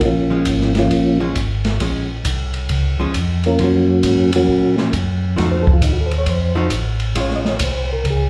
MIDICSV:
0, 0, Header, 1, 5, 480
1, 0, Start_track
1, 0, Key_signature, -5, "minor"
1, 0, Tempo, 446761
1, 14, Time_signature, 4, 2, 24, 8
1, 8913, End_track
2, 0, Start_track
2, 0, Title_t, "Tonewheel organ"
2, 0, Program_c, 0, 16
2, 54, Note_on_c, 0, 58, 59
2, 55, Note_on_c, 0, 65, 77
2, 59, Note_on_c, 0, 61, 64
2, 62, Note_on_c, 0, 53, 58
2, 788, Note_off_c, 0, 58, 0
2, 788, Note_off_c, 0, 65, 0
2, 790, Note_off_c, 0, 61, 0
2, 792, Note_off_c, 0, 53, 0
2, 841, Note_on_c, 0, 53, 81
2, 846, Note_on_c, 0, 65, 97
2, 850, Note_on_c, 0, 61, 75
2, 852, Note_on_c, 0, 58, 73
2, 1274, Note_off_c, 0, 53, 0
2, 1277, Note_off_c, 0, 65, 0
2, 1279, Note_off_c, 0, 61, 0
2, 1280, Note_off_c, 0, 58, 0
2, 3716, Note_on_c, 0, 70, 102
2, 3722, Note_on_c, 0, 58, 85
2, 3724, Note_on_c, 0, 61, 84
2, 3724, Note_on_c, 0, 65, 91
2, 3865, Note_off_c, 0, 70, 0
2, 3868, Note_off_c, 0, 58, 0
2, 3869, Note_off_c, 0, 61, 0
2, 3869, Note_off_c, 0, 65, 0
2, 3901, Note_on_c, 0, 54, 61
2, 3901, Note_on_c, 0, 66, 78
2, 3906, Note_on_c, 0, 58, 72
2, 3911, Note_on_c, 0, 61, 67
2, 4631, Note_off_c, 0, 54, 0
2, 4631, Note_off_c, 0, 66, 0
2, 4634, Note_off_c, 0, 58, 0
2, 4636, Note_off_c, 0, 61, 0
2, 4680, Note_on_c, 0, 66, 97
2, 4682, Note_on_c, 0, 54, 74
2, 4685, Note_on_c, 0, 61, 71
2, 4687, Note_on_c, 0, 58, 72
2, 5113, Note_off_c, 0, 66, 0
2, 5115, Note_off_c, 0, 54, 0
2, 5116, Note_off_c, 0, 61, 0
2, 5117, Note_off_c, 0, 58, 0
2, 5923, Note_on_c, 0, 72, 93
2, 6043, Note_on_c, 0, 69, 89
2, 6081, Note_off_c, 0, 72, 0
2, 6147, Note_off_c, 0, 69, 0
2, 6161, Note_on_c, 0, 65, 79
2, 6247, Note_off_c, 0, 65, 0
2, 6269, Note_on_c, 0, 63, 64
2, 6365, Note_off_c, 0, 63, 0
2, 6369, Note_on_c, 0, 66, 70
2, 6419, Note_off_c, 0, 66, 0
2, 6451, Note_on_c, 0, 69, 80
2, 6513, Note_on_c, 0, 72, 90
2, 6585, Note_off_c, 0, 69, 0
2, 6621, Note_off_c, 0, 72, 0
2, 6642, Note_on_c, 0, 73, 93
2, 6728, Note_off_c, 0, 73, 0
2, 6762, Note_on_c, 0, 72, 90
2, 7196, Note_off_c, 0, 72, 0
2, 7738, Note_on_c, 0, 73, 86
2, 7873, Note_off_c, 0, 73, 0
2, 7904, Note_on_c, 0, 75, 102
2, 8036, Note_off_c, 0, 75, 0
2, 8042, Note_on_c, 0, 73, 97
2, 8184, Note_off_c, 0, 73, 0
2, 8202, Note_on_c, 0, 72, 82
2, 8495, Note_off_c, 0, 72, 0
2, 8514, Note_on_c, 0, 70, 98
2, 8663, Note_off_c, 0, 70, 0
2, 8705, Note_on_c, 0, 68, 95
2, 8913, Note_off_c, 0, 68, 0
2, 8913, End_track
3, 0, Start_track
3, 0, Title_t, "Hollow-body jazz guitar"
3, 0, Program_c, 1, 26
3, 326, Note_on_c, 1, 53, 66
3, 334, Note_on_c, 1, 56, 65
3, 340, Note_on_c, 1, 61, 72
3, 477, Note_off_c, 1, 53, 0
3, 481, Note_off_c, 1, 56, 0
3, 484, Note_off_c, 1, 61, 0
3, 1293, Note_on_c, 1, 53, 64
3, 1294, Note_on_c, 1, 56, 74
3, 1303, Note_on_c, 1, 61, 74
3, 1441, Note_off_c, 1, 53, 0
3, 1442, Note_off_c, 1, 56, 0
3, 1446, Note_off_c, 1, 61, 0
3, 1943, Note_on_c, 1, 53, 50
3, 1949, Note_on_c, 1, 56, 58
3, 1956, Note_on_c, 1, 61, 66
3, 2224, Note_off_c, 1, 53, 0
3, 2227, Note_off_c, 1, 56, 0
3, 2230, Note_off_c, 1, 61, 0
3, 3219, Note_on_c, 1, 53, 67
3, 3230, Note_on_c, 1, 56, 75
3, 3231, Note_on_c, 1, 61, 81
3, 3364, Note_off_c, 1, 53, 0
3, 3370, Note_off_c, 1, 56, 0
3, 3370, Note_off_c, 1, 61, 0
3, 3865, Note_on_c, 1, 53, 52
3, 3877, Note_on_c, 1, 61, 56
3, 3879, Note_on_c, 1, 58, 54
3, 4145, Note_off_c, 1, 53, 0
3, 4151, Note_off_c, 1, 61, 0
3, 4152, Note_off_c, 1, 58, 0
3, 5139, Note_on_c, 1, 53, 67
3, 5145, Note_on_c, 1, 58, 67
3, 5150, Note_on_c, 1, 61, 79
3, 5284, Note_off_c, 1, 53, 0
3, 5287, Note_off_c, 1, 58, 0
3, 5289, Note_off_c, 1, 61, 0
3, 5764, Note_on_c, 1, 53, 67
3, 5774, Note_on_c, 1, 57, 62
3, 5775, Note_on_c, 1, 63, 68
3, 5783, Note_on_c, 1, 66, 72
3, 6054, Note_off_c, 1, 53, 0
3, 6059, Note_off_c, 1, 57, 0
3, 6060, Note_off_c, 1, 63, 0
3, 6064, Note_off_c, 1, 66, 0
3, 7041, Note_on_c, 1, 53, 76
3, 7045, Note_on_c, 1, 57, 70
3, 7053, Note_on_c, 1, 63, 79
3, 7061, Note_on_c, 1, 66, 86
3, 7194, Note_off_c, 1, 53, 0
3, 7196, Note_off_c, 1, 57, 0
3, 7201, Note_off_c, 1, 63, 0
3, 7204, Note_off_c, 1, 66, 0
3, 7687, Note_on_c, 1, 56, 57
3, 7697, Note_on_c, 1, 61, 61
3, 7700, Note_on_c, 1, 65, 62
3, 7975, Note_off_c, 1, 56, 0
3, 7980, Note_off_c, 1, 61, 0
3, 7982, Note_off_c, 1, 65, 0
3, 8913, End_track
4, 0, Start_track
4, 0, Title_t, "Tonewheel organ"
4, 0, Program_c, 2, 16
4, 14, Note_on_c, 2, 34, 93
4, 481, Note_off_c, 2, 34, 0
4, 492, Note_on_c, 2, 32, 80
4, 960, Note_off_c, 2, 32, 0
4, 972, Note_on_c, 2, 34, 86
4, 1440, Note_off_c, 2, 34, 0
4, 1459, Note_on_c, 2, 32, 81
4, 1924, Note_off_c, 2, 32, 0
4, 1935, Note_on_c, 2, 34, 81
4, 2402, Note_off_c, 2, 34, 0
4, 2417, Note_on_c, 2, 36, 82
4, 2883, Note_off_c, 2, 36, 0
4, 2894, Note_on_c, 2, 37, 83
4, 3189, Note_off_c, 2, 37, 0
4, 3209, Note_on_c, 2, 37, 38
4, 3292, Note_off_c, 2, 37, 0
4, 3378, Note_on_c, 2, 41, 93
4, 3843, Note_off_c, 2, 41, 0
4, 3856, Note_on_c, 2, 42, 86
4, 4323, Note_off_c, 2, 42, 0
4, 4337, Note_on_c, 2, 44, 79
4, 4489, Note_on_c, 2, 42, 57
4, 4493, Note_off_c, 2, 44, 0
4, 4653, Note_off_c, 2, 42, 0
4, 4655, Note_on_c, 2, 41, 67
4, 4805, Note_off_c, 2, 41, 0
4, 4816, Note_on_c, 2, 46, 86
4, 5282, Note_off_c, 2, 46, 0
4, 5299, Note_on_c, 2, 42, 85
4, 5764, Note_off_c, 2, 42, 0
4, 5778, Note_on_c, 2, 41, 85
4, 6243, Note_off_c, 2, 41, 0
4, 6253, Note_on_c, 2, 39, 82
4, 6720, Note_off_c, 2, 39, 0
4, 6728, Note_on_c, 2, 41, 93
4, 7197, Note_off_c, 2, 41, 0
4, 7208, Note_on_c, 2, 33, 92
4, 7677, Note_off_c, 2, 33, 0
4, 7688, Note_on_c, 2, 34, 92
4, 8157, Note_off_c, 2, 34, 0
4, 8164, Note_on_c, 2, 36, 91
4, 8635, Note_off_c, 2, 36, 0
4, 8646, Note_on_c, 2, 37, 88
4, 8913, Note_off_c, 2, 37, 0
4, 8913, End_track
5, 0, Start_track
5, 0, Title_t, "Drums"
5, 8, Note_on_c, 9, 51, 59
5, 15, Note_on_c, 9, 36, 28
5, 115, Note_off_c, 9, 51, 0
5, 122, Note_off_c, 9, 36, 0
5, 486, Note_on_c, 9, 44, 68
5, 486, Note_on_c, 9, 51, 76
5, 496, Note_on_c, 9, 36, 24
5, 593, Note_off_c, 9, 44, 0
5, 593, Note_off_c, 9, 51, 0
5, 603, Note_off_c, 9, 36, 0
5, 654, Note_on_c, 9, 38, 29
5, 762, Note_off_c, 9, 38, 0
5, 803, Note_on_c, 9, 51, 51
5, 811, Note_on_c, 9, 38, 47
5, 911, Note_off_c, 9, 51, 0
5, 918, Note_off_c, 9, 38, 0
5, 974, Note_on_c, 9, 51, 65
5, 977, Note_on_c, 9, 36, 21
5, 1081, Note_off_c, 9, 51, 0
5, 1084, Note_off_c, 9, 36, 0
5, 1455, Note_on_c, 9, 44, 58
5, 1455, Note_on_c, 9, 51, 68
5, 1459, Note_on_c, 9, 36, 24
5, 1563, Note_off_c, 9, 44, 0
5, 1563, Note_off_c, 9, 51, 0
5, 1567, Note_off_c, 9, 36, 0
5, 1767, Note_on_c, 9, 51, 51
5, 1772, Note_on_c, 9, 38, 45
5, 1875, Note_off_c, 9, 51, 0
5, 1879, Note_off_c, 9, 38, 0
5, 1935, Note_on_c, 9, 51, 69
5, 1939, Note_on_c, 9, 36, 24
5, 2042, Note_off_c, 9, 51, 0
5, 2047, Note_off_c, 9, 36, 0
5, 2414, Note_on_c, 9, 44, 67
5, 2414, Note_on_c, 9, 51, 79
5, 2419, Note_on_c, 9, 36, 29
5, 2521, Note_off_c, 9, 44, 0
5, 2521, Note_off_c, 9, 51, 0
5, 2527, Note_off_c, 9, 36, 0
5, 2725, Note_on_c, 9, 51, 50
5, 2832, Note_off_c, 9, 51, 0
5, 2890, Note_on_c, 9, 51, 70
5, 2898, Note_on_c, 9, 36, 28
5, 2997, Note_off_c, 9, 51, 0
5, 3005, Note_off_c, 9, 36, 0
5, 3375, Note_on_c, 9, 44, 57
5, 3375, Note_on_c, 9, 51, 68
5, 3380, Note_on_c, 9, 36, 19
5, 3482, Note_off_c, 9, 44, 0
5, 3482, Note_off_c, 9, 51, 0
5, 3488, Note_off_c, 9, 36, 0
5, 3690, Note_on_c, 9, 51, 48
5, 3798, Note_off_c, 9, 51, 0
5, 3853, Note_on_c, 9, 51, 62
5, 3860, Note_on_c, 9, 36, 24
5, 3960, Note_off_c, 9, 51, 0
5, 3967, Note_off_c, 9, 36, 0
5, 4330, Note_on_c, 9, 44, 60
5, 4330, Note_on_c, 9, 51, 88
5, 4338, Note_on_c, 9, 36, 26
5, 4437, Note_off_c, 9, 44, 0
5, 4437, Note_off_c, 9, 51, 0
5, 4446, Note_off_c, 9, 36, 0
5, 4647, Note_on_c, 9, 51, 83
5, 4755, Note_off_c, 9, 51, 0
5, 4820, Note_on_c, 9, 36, 26
5, 4927, Note_off_c, 9, 36, 0
5, 5132, Note_on_c, 9, 38, 40
5, 5240, Note_off_c, 9, 38, 0
5, 5296, Note_on_c, 9, 44, 47
5, 5296, Note_on_c, 9, 51, 64
5, 5301, Note_on_c, 9, 36, 27
5, 5404, Note_off_c, 9, 44, 0
5, 5404, Note_off_c, 9, 51, 0
5, 5408, Note_off_c, 9, 36, 0
5, 5780, Note_on_c, 9, 36, 20
5, 5781, Note_on_c, 9, 51, 57
5, 5786, Note_on_c, 9, 38, 38
5, 5888, Note_off_c, 9, 36, 0
5, 5889, Note_off_c, 9, 51, 0
5, 5893, Note_off_c, 9, 38, 0
5, 6095, Note_on_c, 9, 36, 63
5, 6202, Note_off_c, 9, 36, 0
5, 6251, Note_on_c, 9, 44, 72
5, 6251, Note_on_c, 9, 51, 82
5, 6256, Note_on_c, 9, 36, 29
5, 6358, Note_off_c, 9, 44, 0
5, 6358, Note_off_c, 9, 51, 0
5, 6364, Note_off_c, 9, 36, 0
5, 6567, Note_on_c, 9, 51, 57
5, 6675, Note_off_c, 9, 51, 0
5, 6728, Note_on_c, 9, 51, 66
5, 6732, Note_on_c, 9, 36, 27
5, 6835, Note_off_c, 9, 51, 0
5, 6839, Note_off_c, 9, 36, 0
5, 7200, Note_on_c, 9, 44, 57
5, 7200, Note_on_c, 9, 51, 74
5, 7210, Note_on_c, 9, 36, 18
5, 7307, Note_off_c, 9, 44, 0
5, 7307, Note_off_c, 9, 51, 0
5, 7317, Note_off_c, 9, 36, 0
5, 7517, Note_on_c, 9, 51, 55
5, 7624, Note_off_c, 9, 51, 0
5, 7686, Note_on_c, 9, 51, 76
5, 7690, Note_on_c, 9, 36, 20
5, 7793, Note_off_c, 9, 51, 0
5, 7798, Note_off_c, 9, 36, 0
5, 7846, Note_on_c, 9, 38, 28
5, 7954, Note_off_c, 9, 38, 0
5, 8005, Note_on_c, 9, 38, 50
5, 8112, Note_off_c, 9, 38, 0
5, 8158, Note_on_c, 9, 44, 70
5, 8158, Note_on_c, 9, 51, 91
5, 8169, Note_on_c, 9, 36, 26
5, 8265, Note_off_c, 9, 44, 0
5, 8265, Note_off_c, 9, 51, 0
5, 8276, Note_off_c, 9, 36, 0
5, 8646, Note_on_c, 9, 51, 65
5, 8651, Note_on_c, 9, 36, 21
5, 8753, Note_off_c, 9, 51, 0
5, 8759, Note_off_c, 9, 36, 0
5, 8913, End_track
0, 0, End_of_file